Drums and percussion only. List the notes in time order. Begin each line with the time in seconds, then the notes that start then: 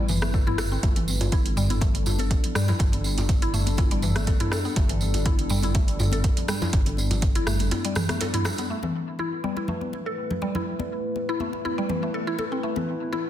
0.08 mid tom, tambourine, muted conga, low conga
0.22 cross-stick, tambourine, high conga
0.34 kick, tambourine
0.47 mid tom, high conga
0.58 cross-stick, tambourine, djembe slap, muted conga
0.71 tambourine
0.83 kick, closed hi-hat, djembe tone
0.96 closed hi-hat, muted conga
1.08 tambourine, high conga
1.21 closed hi-hat, tambourine, djembe tone
1.32 kick, closed hi-hat, tambourine, muted conga, high conga
1.46 closed hi-hat
1.57 mid tom, tambourine
1.70 closed hi-hat, tambourine, muted conga, high conga
1.81 kick, closed hi-hat, tambourine, low conga
1.95 closed hi-hat
2.06 mid tom, tambourine, muted conga, djembe tone, high conga
2.19 closed hi-hat, tambourine, high conga
2.31 kick, closed hi-hat, tambourine
2.44 closed hi-hat, low conga
2.55 cross-stick, tambourine, muted conga
2.68 tambourine, djembe slap, low conga
2.79 kick, closed hi-hat, tambourine, djembe tone
2.93 closed hi-hat, muted conga
3.04 tambourine, high conga
3.18 closed hi-hat, tambourine, djembe tone
3.29 kick, closed hi-hat, tambourine, muted conga, high conga
3.42 closed hi-hat
3.54 mid tom, tambourine
3.66 closed hi-hat, tambourine, muted conga, high conga
3.77 kick, closed hi-hat, high conga, djembe tone
3.91 closed hi-hat
4.02 mid tom, tambourine, muted conga, low conga
4.16 cross-stick, closed hi-hat, tambourine, high conga
4.27 kick, closed hi-hat, tambourine
4.40 closed hi-hat, mid tom, high conga
4.52 cross-stick, tambourine, muted conga, djembe slap
4.65 tambourine
4.76 kick, closed hi-hat, tambourine, djembe tone
4.89 closed hi-hat, muted conga
5.01 tambourine, high conga
5.14 closed hi-hat, tambourine, djembe tone
5.26 kick, closed hi-hat, tambourine, muted conga, high conga
5.39 closed hi-hat
5.50 mid tom, tambourine
5.63 closed hi-hat, tambourine, muted conga, high conga
5.74 kick, closed hi-hat, low conga
5.88 closed hi-hat
5.99 mid tom, tambourine, muted conga, high conga, djembe tone
6.12 closed hi-hat, tambourine, high conga
6.24 kick, closed hi-hat, tambourine
6.37 closed hi-hat, low conga
6.48 cross-stick, tambourine, muted conga
6.62 tambourine, djembe slap, low conga
6.73 kick, closed hi-hat, tambourine, djembe tone
6.86 closed hi-hat, muted conga
6.97 tambourine, high conga
7.11 closed hi-hat, tambourine, djembe tone, low conga
7.21 kick, closed hi-hat, tambourine, muted conga, high conga
7.35 closed hi-hat
7.47 cross-stick, mid tom, tambourine
7.59 closed hi-hat, tambourine, muted conga, high conga
7.71 closed hi-hat, tambourine, djembe tone, high conga
7.85 closed hi-hat
7.95 cross-stick, mid tom, tambourine, muted conga, low conga
8.09 cross-stick, closed hi-hat, tambourine, high conga
8.21 closed hi-hat, tambourine, djembe slap
8.34 closed hi-hat, mid tom, high conga
8.45 cross-stick, tambourine, muted conga, djembe slap, low conga
8.57 closed hi-hat, tambourine
8.83 muted conga, high conga
9.19 muted conga
9.44 high conga
9.57 muted conga
9.68 low conga
9.81 high conga
9.93 muted conga
10.31 low conga
10.42 muted conga
10.55 low conga
10.79 muted conga, high conga
11.16 muted conga
11.40 high conga
11.53 muted conga
11.65 high conga
11.89 muted conga, high conga, low conga
12.39 muted conga
12.76 muted conga, high conga
13.13 muted conga